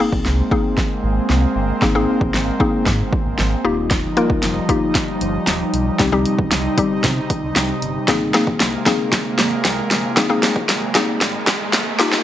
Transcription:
Already playing: analog synth pad G#3 A#3 C4
0.00 synth pluck A#3 C4 D#4 G#4
0.12 sub bass A#1, kick
0.25 sub bass C2, snare
0.51 synth pluck A#3 C4 D#4 G#4, kick
0.78 kick, snare
1.04 sub bass G#1
1.30 sub bass C2, snare
1.56 sub bass G1
1.82 sub bass G#1, synth pluck A#3 C4 D#4 G#4, kick, snare
1.95 synth pluck A#3 C4 D#4 G#4
2.21 sub bass A#1, kick
2.34 sub bass G#1, snare
2.60 synth pluck A#3 C4 D#4 G#4, kick
2.86 sub bass G#2, kick, snare
3.13 kick
3.26 sub bass G#1
3.39 sub bass G#1, snare
3.65 sub bass D#1, analog synth pad F3 G3 D#4, synth pluck A#3 D#4 F4 G4
3.91 kick, snare, closed hi-hat
4.17 synth pluck A#3 D#4 F4 A#4, closed hi-hat
4.30 sub bass D#1, kick
4.43 sub bass F1, snare, closed hi-hat
4.69 synth pluck A#3 D#4 F4 G4, kick, closed hi-hat
4.95 kick, snare, closed hi-hat
5.21 sub bass G1, closed hi-hat
5.47 sub bass D#1, snare, closed hi-hat
5.73 sub bass B1, closed hi-hat
5.99 sub bass C2, analog synth pad C3 D#4, synth pluck G3 C4 D#4 G4, kick, snare, closed hi-hat
6.12 synth pluck G3 C4 D#4 G4
6.26 closed hi-hat
6.39 sub bass A#1, kick
6.51 sub bass C2, snare, closed hi-hat
6.78 synth pluck G3 C4 D#4 G4, kick, closed hi-hat
7.04 sub bass C3, kick, snare, closed hi-hat
7.30 kick, closed hi-hat
7.43 sub bass C2
7.56 sub bass C2, snare, closed hi-hat
7.82 sub bass G1, closed hi-hat
8.08 sub bass G#1, analog synth pad C3 G#3 A#3, synth pluck A#3 C4 D#4 G#4, kick, snare, closed hi-hat, riser
8.34 synth pluck A#3 C4 D#4 G#4, snare, closed hi-hat
8.47 sub bass A#1, kick
8.60 sub bass C2, snare, closed hi-hat
8.86 synth pluck A#3 C4 D#4 G#4, kick, snare, closed hi-hat
9.12 kick, snare, closed hi-hat
9.38 sub bass G#1, snare, closed hi-hat
9.65 sub bass C2, snare, closed hi-hat
9.91 sub bass G1, snare, closed hi-hat
10.17 sub bass G#1, synth pluck A#3 C4 D#4 G#4, kick, snare, closed hi-hat
10.29 synth pluck A#3 C4 D#4 G#4
10.43 snare, closed hi-hat
10.56 sub bass A#1, kick
10.69 sub bass G#1, snare, closed hi-hat
10.95 synth pluck A#3 C4 D#4 G#4, kick, snare, closed hi-hat
11.21 sub bass G#2, kick, snare, closed hi-hat
11.47 kick, snare, closed hi-hat
11.60 sub bass G#1
11.73 sub bass G#1, snare, closed hi-hat
11.99 sub bass D#1, analog synth pad F3 G3 D#4, synth pluck A#3 D#4 F4 G4, snare, closed hi-hat
12.12 snare

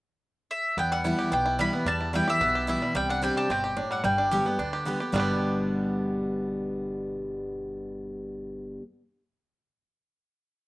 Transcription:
0.51 mandolin E5
0.77 upright bass E2, steel-string acoustic guitar E2, five-string banjo B3, mandolin G5
0.92 five-string banjo G3, mandolin F#5
1.04 steel-string acoustic guitar E3 G3 B3 E4, five-string banjo E4
1.19 five-string banjo G4
1.32 upright bass B1, steel-string acoustic guitar B2, five-string banjo B3, mandolin G5
1.46 five-string banjo E4
1.59 steel-string acoustic guitar E3 G3 B3 E4, five-string banjo G3, mandolin B5
1.73 five-string banjo B3, steel-string acoustic guitar B3 E4
1.85 upright bass E2, steel-string acoustic guitar E2, five-string banjo G3, mandolin A5
2.01 five-string banjo E4
2.13 steel-string acoustic guitar E3 G3 B3 E4, five-string banjo G3, mandolin G5
2.27 steel-string acoustic guitar B3 E4, five-string banjo G4, mandolin E5
2.41 upright bass B1, steel-string acoustic guitar B2, five-string banjo B3
2.55 five-string banjo G4
2.67 steel-string acoustic guitar E3 G3 B3 E4, five-string banjo E4, mandolin E5
2.82 five-string banjo G3, steel-string acoustic guitar B3 E4
2.94 upright bass C2, steel-string acoustic guitar C3, five-string banjo G3, mandolin G5
3.09 five-string banjo D4, mandolin F#5
3.22 steel-string acoustic guitar G3 C4 D4 G4, five-string banjo G3, mandolin G5
3.37 five-string banjo G4, mandolin A5
3.49 upright bass G1, steel-string acoustic guitar B2, five-string banjo C4, mandolin G5
3.64 five-string banjo G4
3.77 steel-string acoustic guitar A2, five-string banjo D4
3.91 five-string banjo G3, mandolin F#5
4.04 upright bass G1, steel-string acoustic guitar G2, five-string banjo G3, mandolin G5
4.18 five-string banjo D4
4.31 steel-string acoustic guitar D3 G3 B3 G4, five-string banjo G4
4.46 five-string banjo B3, steel-string acoustic guitar B3 G4
4.59 upright bass D2, steel-string acoustic guitar D3, five-string banjo D4
4.73 five-string banjo G4
4.85 steel-string acoustic guitar D3 G3 B3 G4, five-string banjo B3
5.00 steel-string acoustic guitar B3 G4, five-string banjo G4
5.12 upright bass G1, steel-string acoustic guitar G2 B2 D3 G3 B3 G4, five-string banjo G3 B3
5.18 five-string banjo D4 G4

